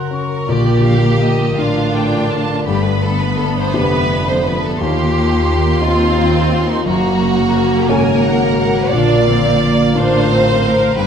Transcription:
0.00 0.45 F#2 soft
0.00 0.52 F#2 soft
0.00 0.53 C#3 soft
0.00 0.52 A#3 soft
0.00 0.10 F#4 soft
0.00 0.52 F#4 soft
0.00 0.48 A#4 medium
0.00 0.52 A#4 soft
0.00 0.15 F#5 soft
0.00 0.11 C6 soft
0.11 0.49 C#4 soft
0.11 0.52 F#4 soft
0.11 0.49 C#6 soft
0.48 1.55 A#1 medium
0.48 1.55 A#2 medium
0.48 1.54 A#2 medium
0.48 4.75 D3 medium
0.48 2.70 D3 medium
0.48 1.58 G4 medium
0.48 2.63 A#4 medium
0.48 0.83 D5 medium
0.87 2.70 F3 soft
0.87 1.23 F5 soft
1.22 1.58 D#5 medium
1.58 2.67 A1 medium
1.58 2.67 A2 medium
1.58 2.63 D4 soft
1.58 2.63 D4 medium
1.58 3.73 D4 soft
1.58 2.67 F4 medium
1.58 2.64 F4 soft
1.58 1.95 F5 medium
1.95 2.70 A#4 soft
1.95 2.31 G5 medium
2.31 2.67 A5 medium
2.66 3.72 G1 medium
2.66 3.71 G2 medium
2.66 4.83 G2 medium
2.66 4.79 A3 medium
2.66 4.80 B3 medium
2.66 2.84 G4 medium
2.66 4.77 B5 medium
2.84 3.02 B4 medium
3.02 4.83 D3 soft
3.02 3.20 A4 medium
3.22 3.39 B4 medium
3.37 4.44 B3 soft
3.37 3.55 A4 medium
3.58 3.74 C5 medium
3.73 4.80 F1 medium
3.73 4.80 F2 medium
3.73 4.76 D4 soft
3.73 4.83 D4 soft
3.73 4.76 G4 soft
3.73 4.28 B4 medium
4.11 4.83 A4 soft
4.29 4.46 C5 medium
4.45 4.83 B3 soft
4.45 4.64 B4 medium
4.66 4.82 A4 medium
4.79 5.81 D#2 medium
4.79 6.82 D#2 medium
4.79 5.81 D#2 medium
4.79 6.89 D#3 medium
4.79 8.88 A#3 medium
4.79 5.81 A#3 medium
4.79 6.82 F4 medium
4.79 6.82 C6 medium
4.83 5.82 G4 medium
5.16 6.89 D#4 soft
5.81 6.84 D#2 medium
5.81 6.86 C4 medium
5.81 6.81 D#4 soft
5.81 6.82 F4 medium
5.81 6.89 F4 soft
5.81 6.69 F4 medium
6.18 8.23 A#4 soft
6.71 6.87 D#4 medium
6.84 7.89 F#1 medium
6.84 8.95 F#2 medium
6.84 7.86 F#2 medium
6.84 7.89 F#2 medium
6.84 8.89 A#3 medium
6.84 8.88 F#4 medium
6.84 7.88 F#4 medium
6.84 7.88 A#5 medium
7.20 8.95 C#3 medium
7.55 11.01 F#3 soft
7.89 8.93 G#1 medium
7.89 8.93 G#2 medium
7.89 8.89 C#4 soft
7.89 8.96 F#4 medium
7.89 8.89 F#4 soft
7.89 8.93 A#4 medium
7.89 8.24 G#5 medium
8.23 10.29 A#4 soft
8.23 8.58 F#5 medium
8.59 8.92 F#5 medium
8.91 9.94 A#1 medium
8.91 9.93 A#2 medium
8.91 9.92 A#2 medium
8.91 11.01 D3 medium
8.91 9.27 D4 medium
8.91 10.81 F4 medium
8.91 10.81 A#4 medium
8.91 9.95 D5 medium
8.91 9.94 F5 medium
9.28 11.01 F3 soft
9.28 9.61 C4 medium
9.61 9.96 A#3 medium
9.61 11.01 D4 soft
9.95 10.98 A1 medium
9.95 10.98 A2 medium
9.95 10.94 D4 soft
9.95 10.30 D4 medium
9.95 11.00 F4 medium
9.95 10.94 F4 medium
9.95 10.99 C5 loud
9.95 10.96 F5 medium
10.30 10.65 C4 medium
10.30 11.01 A#4 soft
10.65 10.99 A#4 medium
10.96 11.07 G1 medium
10.96 11.07 G2 soft
10.96 11.07 G2 medium
10.96 11.07 B3 medium
10.96 11.07 G4 medium
10.96 11.07 B4 medium
10.96 11.07 G5 medium

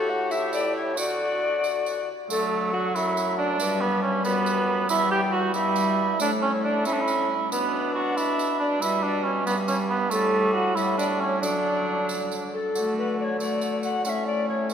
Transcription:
0.00 0.99 A2 medium
0.00 0.32 F#4 medium
0.00 0.31 G4 medium
0.00 0.11 A4 medium
0.09 0.32 F#5 medium
0.31 0.97 E4 medium
0.31 0.98 G4 medium
0.31 0.53 E5 medium
0.31 tambourine soft
0.53 0.75 D5 medium
0.53 tambourine soft
0.76 0.99 C#5 medium
0.97 2.08 D3 medium
0.97 2.08 F#4 medium
0.97 1.96 F#4 medium
0.97 2.08 D5 medium
0.97 tambourine medium
1.64 tambourine soft
1.86 tambourine soft
2.29 2.91 D3 medium
2.29 3.56 F#3 medium
2.29 2.70 A3 medium
2.29 2.75 A4 medium
2.29 tambourine medium
2.74 2.97 F#4 medium
2.74 2.95 F#5 medium
2.95 3.59 F#2 medium
2.95 3.37 E4 medium
2.95 3.41 E5 medium
2.95 tambourine soft
3.17 tambourine medium
3.37 3.82 D4 loud
3.37 3.83 D5 medium
3.60 4.27 G2 medium
3.60 4.24 G3 medium
3.60 tambourine medium
3.81 4.02 B3 medium
3.81 4.02 B4 medium
4.02 4.24 C#4 medium
4.02 4.24 C#5 medium
4.25 4.89 F#2 medium
4.25 4.89 G3 medium
4.25 4.89 B3 medium
4.25 4.89 B4 medium
4.25 tambourine soft
4.46 tambourine medium
4.89 5.54 E2 medium
4.89 5.53 G3 medium
4.89 5.11 E4 loud
4.89 5.11 E5 medium
4.89 tambourine medium
5.11 5.21 G4 loud
5.11 5.33 G5 medium
5.32 5.54 F#4 medium
5.32 5.40 F#5 medium
5.54 6.19 G2 medium
5.54 6.19 G3 medium
5.54 6.19 E4 loud
5.54 6.19 E5 medium
5.54 tambourine medium
5.76 tambourine medium
6.20 6.85 A2 medium
6.20 6.88 A3 medium
6.20 6.31 D4 loud
6.20 6.26 D5 medium
6.20 tambourine medium
6.42 6.52 C#4 medium
6.42 6.64 C#5 medium
6.64 6.86 D4 medium
6.64 6.85 D5 medium
6.85 7.29 A2 medium
6.85 7.32 C#4 medium
6.85 6.94 E4 medium
6.85 7.28 E5 medium
6.85 tambourine medium
6.93 7.02 D4 medium
7.00 7.51 E4 loud
7.08 tambourine medium
7.52 8.78 B2 medium
7.52 7.94 B3 medium
7.52 8.79 D4 medium
7.52 7.95 B4 medium
7.52 tambourine medium
7.95 8.18 F#4 medium
7.95 8.17 F#5 medium
8.17 8.59 E4 medium
8.17 8.60 E5 medium
8.17 tambourine soft
8.39 tambourine medium
8.60 8.83 D4 loud
8.60 8.82 D5 medium
8.81 9.49 B2 medium
8.81 9.46 G3 medium
8.81 9.05 E4 loud
8.81 9.04 E5 medium
8.81 tambourine medium
9.03 9.25 D4 medium
9.03 9.24 D5 medium
9.24 9.46 C#4 medium
9.24 9.31 C#5 medium
9.46 10.11 G2 medium
9.46 10.11 G3 medium
9.46 9.56 B3 medium
9.46 9.53 B4 medium
9.46 tambourine soft
9.68 9.78 C#4 medium
9.68 9.74 C#5 medium
9.68 tambourine medium
9.90 10.12 B3 medium
9.90 9.97 B4 medium
10.10 10.76 A2 medium
10.10 10.76 G3 medium
10.10 10.53 A3 medium
10.10 10.55 A4 medium
10.10 tambourine medium
10.53 10.77 F#4 medium
10.53 10.76 F#5 medium
10.75 11.42 A2 medium
10.75 11.45 G3 medium
10.75 10.97 E4 medium
10.75 10.99 E5 medium
10.75 tambourine soft
10.98 11.22 D4 medium
10.98 11.05 D5 medium
10.98 tambourine medium
11.20 11.41 C#4 medium
11.20 11.43 C#5 medium
11.41 12.51 D3 medium
11.41 12.55 F#3 medium
11.41 12.50 D4 medium
11.41 12.31 D5 medium
11.41 tambourine medium
12.09 tambourine soft
12.31 tambourine soft
12.53 12.94 A4 medium
12.74 14.02 D3 medium
12.74 13.37 A3 medium
12.74 13.36 F#4 medium
12.74 tambourine medium
12.98 13.19 B4 medium
13.19 13.25 D5 medium
13.24 13.40 C#5 medium
13.40 14.04 A3 medium
13.40 14.07 F#4 soft
13.40 13.83 D5 medium
13.40 tambourine soft
13.61 tambourine soft
13.83 14.05 F#5 medium
13.83 tambourine soft
14.05 14.74 A2 medium
14.05 14.74 A3 medium
14.05 14.74 C#4 medium
14.05 14.10 F#5 medium
14.05 tambourine medium
14.09 14.26 E5 medium
14.27 14.48 D5 medium
14.49 14.70 C#5 medium
14.70 tambourine soft

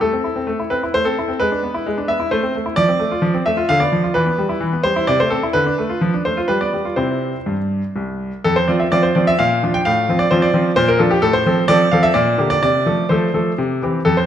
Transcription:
0.01 0.13 A3 soft
0.01 0.70 A4 medium
0.13 0.25 C4 soft
0.24 0.36 E4 soft
0.36 0.48 C4 soft
0.47 0.58 A3 medium
0.60 0.71 E4 soft
0.70 0.83 C4 soft
0.70 0.84 B4 medium
0.83 0.95 E4 soft
0.94 1.05 A3 soft
0.94 1.05 C5 medium
1.05 1.17 C4 soft
1.05 1.39 A4 medium
1.19 1.29 E4 soft
1.28 1.39 C4 soft
1.40 1.51 G#3 medium
1.40 2.08 B4 medium
1.52 1.63 D4 soft
1.63 1.74 B3 soft
1.74 1.86 E4 soft
1.86 1.97 G#3 medium
1.98 2.09 D4 soft
2.08 2.20 B3 soft
2.08 2.28 E5 medium
2.20 2.31 E4 soft
2.31 2.42 A3 medium
2.31 2.54 C5 medium
2.43 2.54 C4 soft
2.55 2.66 A3 soft
2.66 2.77 E4 soft
2.76 2.88 F3 medium
2.76 3.41 D5 medium
2.88 3.00 C4 soft
2.99 3.11 A3 soft
3.11 3.23 F4 soft
3.22 3.33 F3 medium
3.34 3.46 C4 soft
3.46 3.58 A3 soft
3.46 3.69 E5 medium
3.57 3.68 F4 medium
3.69 3.80 D3 medium
3.69 3.80 F5 medium
3.80 3.92 B3 soft
3.80 4.11 D5 medium
3.92 4.04 F3 soft
4.03 4.15 F4 soft
4.14 4.26 E3 medium
4.14 4.84 B4 medium
4.26 4.38 B3 soft
4.38 4.50 G3 soft
4.49 4.61 E4 soft
4.61 4.72 E3 medium
4.73 4.85 B3 soft
4.83 4.96 G3 soft
4.83 5.07 C5 medium
4.96 5.08 E4 medium
5.07 5.19 C3 medium
5.07 5.19 D5 medium
5.20 5.32 A3 soft
5.20 5.31 C5 medium
5.30 5.43 C4 soft
5.30 5.44 A4 medium
5.43 5.54 E4 soft
5.53 5.65 D3 medium
5.53 6.20 B4 medium
5.67 5.78 D4 soft
5.78 5.90 A3 soft
5.89 6.01 F4 soft
6.01 6.12 F3 medium
6.14 6.26 D4 soft
6.25 6.37 A3 soft
6.25 6.39 C5 medium
6.37 6.48 F4 soft
6.48 6.60 G3 medium
6.48 6.60 B4 medium
6.61 6.74 B3 soft
6.61 6.97 D5 medium
6.73 6.86 G3 soft
6.85 6.97 F4 soft
6.96 7.31 C3 soft
6.96 7.36 C4 soft
6.96 7.36 E4 soft
6.96 7.56 C5 medium
7.46 7.81 G2 soft
7.96 8.30 C2 soft
8.44 8.68 F2 medium
8.44 8.56 A4 medium
8.56 8.68 C5 medium
8.68 8.85 F3 soft
8.68 8.86 C4 soft
8.68 8.86 F4 soft
8.68 8.80 D5 medium
8.80 8.92 E5 medium
8.92 9.09 F3 soft
8.92 9.09 C4 soft
8.92 9.10 F4 soft
8.92 9.04 D5 medium
9.03 9.15 C5 medium
9.15 9.33 F3 soft
9.15 9.33 C4 soft
9.15 9.33 F4 soft
9.15 9.27 D5 medium
9.27 9.39 E5 medium
9.39 9.62 A#2 medium
9.39 9.60 F5 medium
9.63 9.80 F3 soft
9.63 9.80 D4 soft
9.63 9.80 F4 soft
9.74 9.86 G5 medium
9.85 10.09 A2 medium
9.85 10.20 F5 medium
10.09 10.25 F3 soft
10.09 10.26 C4 soft
10.09 10.26 F4 soft
10.19 10.31 D5 medium
10.31 10.48 F3 soft
10.31 10.48 C4 medium
10.31 10.48 F4 medium
10.31 10.43 C5 medium
10.42 10.73 D5 medium
10.54 10.70 F3 soft
10.54 10.70 C4 soft
10.54 10.71 F4 soft
10.76 10.99 A#2 medium
10.76 10.88 C5 medium
10.88 11.00 A#4 medium
10.99 11.16 F3 soft
10.99 11.16 D4 soft
10.99 11.16 F4 soft
10.99 11.11 A4 medium
11.11 11.22 G4 medium
11.22 11.44 A2 medium
11.22 11.34 A4 medium
11.33 11.68 C5 medium
11.46 11.62 F3 soft
11.46 11.62 C4 soft
11.46 11.63 A4 medium
11.68 11.85 F3 medium
11.68 11.85 C4 medium
11.68 11.85 A4 medium
11.68 11.91 D5 loud
11.91 12.09 F3 soft
11.91 12.09 C4 soft
11.91 12.09 A4 medium
11.91 12.03 F5 medium
12.03 12.14 E5 medium
12.14 12.38 A#2 medium
12.14 12.49 D5 medium
12.38 12.55 D3 soft
12.38 12.55 A#3 soft
12.38 12.56 G4 soft
12.50 12.61 D5 medium
12.63 12.86 C3 medium
12.63 13.06 D5 medium
12.86 13.03 F3 soft
12.86 13.03 A3 soft
12.86 13.04 A4 soft
13.09 13.27 F3 soft
13.09 13.28 A3 soft
13.09 13.28 A4 medium
13.09 13.57 C5 medium
13.34 13.51 F3 soft
13.34 13.51 A3 soft
13.34 13.51 A4 soft
13.58 13.81 C3 medium
13.82 13.99 E3 soft
13.82 14.00 C4 soft
13.82 14.00 G4 soft
14.05 14.26 F2 medium
14.05 14.17 A4 medium
14.17 14.26 C5 medium

